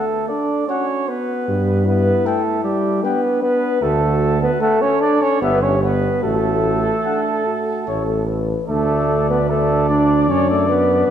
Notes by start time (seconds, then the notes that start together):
Already playing: A3 A4
0.28 D4 D5
0.68 C#4 F#4 C#5 F#5
1.08 B3 B4
1.48 G2 G4
1.87 B3 E4 B4
2.26 A3 A4 G5
2.64 G3 G4
3.03 B3 D4 B4 G5
3.42 B3 B4
3.81 D2 A3 F#4 A4
4.42 B3 B4
4.61 A3 A4 F#5
4.81 C#4 C#5
5.01 D4 D5
5.22 C#4 C#5
5.41 G1 B3 G4 B4 E5
5.62 C#4 C#5
5.82 B3 B4
6.23 A1 A3 F#4 A4
7.05 D4 F#5
7.46 F#4
7.87 A1 A4 C#5
8.28 B4
8.68 D2 A3 D4 A4 D5
9.29 B3 B4
9.49 A3 A4 D5
9.89 D4 D5
10.28 F#2 C#4 C#5
10.49 A3 A4
10.68 B3 B4
11.07 D5